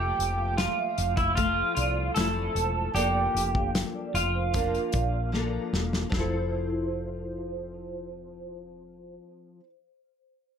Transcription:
Already playing: F1 F3 A3 C4 G4 A4
0.19 F1, closed hi-hat
0.37 F5
0.58 F4, snare, closed hi-hat
0.78 E5
0.98 F1, closed hi-hat
1.17 E4 F5, kick, closed hi-hat
1.35 F3 A3 C4 F4, kick, closed hi-hat
1.75 C2 F4 D5, closed hi-hat
2.15 F1 F3 A3 C4 A4, snare, closed hi-hat
2.19 E4
2.55 E1 C5, closed hi-hat
2.94 F1 F3 A#3 G4 D5, closed hi-hat
2.98 D4 A4
3.35 F1, closed hi-hat
3.55 F5, kick
3.75 snare, closed hi-hat
3.95 D5
4.14 F1 F4, closed hi-hat
4.35 C5
4.53 F3 A#3 D4 A#4, kick, closed hi-hat
4.75 closed hi-hat
4.91 A#1 D5, kick, closed hi-hat
5.32 F3 A#3 D4, snare
5.36 A4
5.73 E1, snare
5.93 snare
6.10 F1 F3 C4 C5, kick, snare
6.16 E4 A4

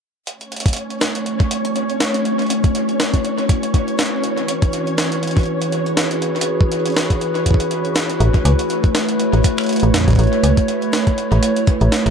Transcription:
0.27 A3 C#4 C#5, closed hi-hat
0.41 closed hi-hat
0.45 B4
0.50 E4, closed hi-hat
0.56 closed hi-hat
0.60 closed hi-hat
0.66 kick, closed hi-hat
0.68 closed hi-hat
0.73 C#5, closed hi-hat
0.77 closed hi-hat
0.86 F#4, closed hi-hat
1.01 snare, closed hi-hat
1.15 closed hi-hat
1.26 closed hi-hat
1.40 kick, closed hi-hat
1.51 closed hi-hat
1.65 closed hi-hat
1.76 closed hi-hat
1.90 closed hi-hat
2.00 snare, closed hi-hat
2.14 closed hi-hat
2.25 closed hi-hat
2.39 closed hi-hat
2.42 closed hi-hat
2.46 closed hi-hat
2.50 closed hi-hat
2.64 kick, closed hi-hat
2.75 closed hi-hat
2.89 closed hi-hat
3.00 snare, closed hi-hat
3.14 kick, closed hi-hat
3.25 closed hi-hat
3.38 closed hi-hat
3.49 kick, closed hi-hat
3.63 closed hi-hat
3.74 kick, closed hi-hat
3.88 closed hi-hat
3.99 snare, closed hi-hat
4.06 closed hi-hat
4.24 E3, closed hi-hat
4.38 closed hi-hat
4.48 closed hi-hat
4.62 kick, closed hi-hat
4.73 closed hi-hat
4.87 closed hi-hat
4.98 snare, closed hi-hat
5.11 G#4, closed hi-hat
5.23 closed hi-hat
5.27 closed hi-hat
5.31 closed hi-hat
5.37 kick, closed hi-hat
5.39 closed hi-hat
5.41 closed hi-hat
5.43 closed hi-hat
5.46 closed hi-hat
5.62 closed hi-hat
5.72 closed hi-hat
5.86 closed hi-hat
5.97 snare, closed hi-hat
6.11 closed hi-hat
6.22 closed hi-hat
6.36 closed hi-hat
6.41 closed hi-hat
6.61 kick
6.72 closed hi-hat
6.86 closed hi-hat
6.88 closed hi-hat
6.92 closed hi-hat
6.94 snare, closed hi-hat
7.10 kick, closed hi-hat
7.21 closed hi-hat
7.35 closed hi-hat
7.46 kick, closed hi-hat
7.51 kick
7.54 kick
7.60 closed hi-hat
7.71 closed hi-hat
7.85 closed hi-hat
7.96 snare, closed hi-hat
8.10 closed hi-hat
8.20 A1 A3, closed hi-hat
8.34 kick, closed hi-hat
8.45 C#2, closed hi-hat
8.59 closed hi-hat
8.70 closed hi-hat
8.84 C#5, kick, closed hi-hat
8.95 finger snap, snare, closed hi-hat
9.09 closed hi-hat
9.20 closed hi-hat
9.33 A1, closed hi-hat
9.44 kick, closed hi-hat
9.58 finger snap, closed hi-hat
9.61 closed hi-hat
9.64 closed hi-hat
9.66 closed hi-hat
9.69 closed hi-hat
9.73 closed hi-hat
9.76 closed hi-hat
9.80 A1, closed hi-hat
9.83 closed hi-hat
9.94 kick, snare, closed hi-hat
9.97 kick
10.01 kick
10.04 A1, kick
10.08 kick, closed hi-hat
10.10 kick, closed hi-hat
10.13 kick, closed hi-hat
10.16 A1, kick, closed hi-hat
10.23 closed hi-hat
10.27 closed hi-hat
10.33 closed hi-hat
10.43 C#2, closed hi-hat
10.57 kick, closed hi-hat
10.68 closed hi-hat
10.82 closed hi-hat
10.93 finger snap, snare, closed hi-hat
11.07 kick, closed hi-hat
11.18 closed hi-hat
11.32 A1, closed hi-hat
11.43 closed hi-hat
11.56 closed hi-hat
11.67 kick, closed hi-hat
11.81 A1, closed hi-hat
11.92 snare, closed hi-hat
12.06 A1, finger snap, closed hi-hat

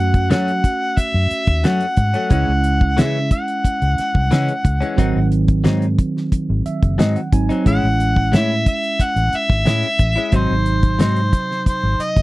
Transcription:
Already playing: F#2 A3 C#4 F#4 F#5
0.14 kick, closed hi-hat
0.30 F#2 F#3 A3 C#4 F#5, snare, closed hi-hat
0.48 closed hi-hat
0.64 kick, closed hi-hat
0.97 E5, kick, closed hi-hat
1.14 F#2
1.31 muted fingered electric bass stroke, closed hi-hat
1.47 D#2, kick, closed hi-hat
1.64 F#2 F#3 A3 C#4 F#5, snare, closed hi-hat
1.81 closed hi-hat
1.97 G#2, kick, closed hi-hat
2.14 F#3 A3 C#4, closed hi-hat
2.29 C#2 C#3 E3 G#3 C#4 E4, kick, closed hi-hat
2.33 F#5
2.48 C#2
2.64 closed hi-hat
2.81 kick
2.97 C#3 E3 G#3 C#4 E5, snare, closed hi-hat
3.31 F#5, kick, closed hi-hat
3.48 closed hi-hat
3.65 kick, closed hi-hat
3.82 C#2, closed hi-hat
3.98 snare, closed hi-hat
4.15 C2, kick
4.31 C#3 E3 G#3 C#4, snare, closed hi-hat
4.48 closed hi-hat
4.65 C#2, kick, closed hi-hat
4.81 E3 G#3 C#4, closed hi-hat
4.96 G#1 G#2 D#3 F#3 C4 D#4, kick, closed hi-hat
5.16 G#1
5.32 closed hi-hat
5.48 kick, closed hi-hat
5.64 G#2 F#3 C4 D#4, snare, closed hi-hat
5.82 closed hi-hat
5.99 kick, closed hi-hat
6.17 snare
6.32 kick, closed hi-hat
6.50 G#1
6.66 E5, closed hi-hat
6.83 F#1, kick, closed hi-hat
6.98 G#2 F#3 C4 D#4 D#5, snare, closed hi-hat
7.16 F#5, closed hi-hat
7.32 G#1 F#3 C4 D#4 G#5, kick, closed hi-hat
7.49 F#3 C4 D#4, closed hi-hat
7.64 A1 A2 G#3 C#4 E4 F#5, kick, closed hi-hat
7.83 A1
8.00 closed hi-hat
8.16 kick
8.32 A2 G#3 C#4 E4 E5, snare, closed hi-hat
8.66 E5, kick, closed hi-hat
8.83 closed hi-hat
9.00 F#5, kick, closed hi-hat
9.16 A1, closed hi-hat
9.33 E5, closed hi-hat
9.50 G#1, kick, snare
9.65 A2 G#3 C#4 E4, snare, closed hi-hat
9.83 closed hi-hat
9.99 A1, kick, closed hi-hat
10.16 G#3 C#4 E4, closed hi-hat
10.31 G#1 G#2 C3 F#3 C4 D#4, kick, closed hi-hat
10.36 C5
10.51 G#1
10.66 closed hi-hat
10.83 kick, closed hi-hat
10.99 G#2 F#3 C4 D#4 C5, snare, closed hi-hat
11.16 closed hi-hat
11.33 kick, closed hi-hat
11.51 snare
11.66 C5, kick, closed hi-hat
11.83 G#1
11.99 D#5, muted fingered electric bass stroke, closed hi-hat
12.16 F#1, kick, closed hi-hat

